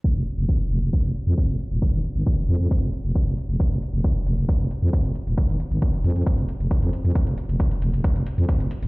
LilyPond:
<<
  \new Staff \with { instrumentName = "FM bass" } { \clef bass \time 4/4 \key f \minor \tempo 4 = 135 r16 f,,16 r16 f,,16 r8 f,,16 f,,16 r16 f,,16 r16 f,16 r16 f,,16 r16 ees,,16 | r16 aes,,16 r16 aes,,16 r8 f,16 f,16 r16 f,,16 r16 f,,16 r16 f,,16 r16 f,,16 | r16 f,,16 r16 f,,16 r8 f,,16 f,,16 r16 f,,16 r16 f,16 r16 f,,16 r16 ees,,16 | r16 aes,,16 r16 aes,,16 r8 f,16 f,16 r16 f,,16 r16 f,,16 r16 f,16 r16 f,16 |
r16 f,,16 r16 f,,16 r8 f,,16 f,,16 r16 f,,16 r16 f,16 r16 f,,16 r16 ees,,16 | }
  \new DrumStaff \with { instrumentName = "Drums" } \drummode { \time 4/4 <hh bd>16 hh16 hh16 hh16 <hh bd>16 hh16 hh16 hh16 <hh bd>16 hh16 hh16 hh16 <hh bd>16 hh16 hh16 hh16 | <hh bd>16 hh16 hh16 hh16 <hh bd>16 hh16 hh16 hh16 <hh bd>16 hh16 hh16 hh16 <hh bd>16 hh16 hh16 hh16 | <hh bd>16 hh16 hh16 hh16 <hh bd>16 hh16 hh16 hh16 <hh bd>16 hh16 hh16 hh16 <hh bd>16 hh16 hh16 hh16 | <hh bd>16 hh16 hh16 hh16 <hh bd>16 hh16 hh16 hh16 <hh bd>16 hh16 hh16 hh16 <hh bd>16 hh16 hh16 hh16 |
<hh bd>16 hh16 hh16 hh16 <hh bd>16 hh16 hh16 hh16 <hh bd>16 hh16 hh16 hh16 <hh bd>16 hh16 hh16 hh16 | }
>>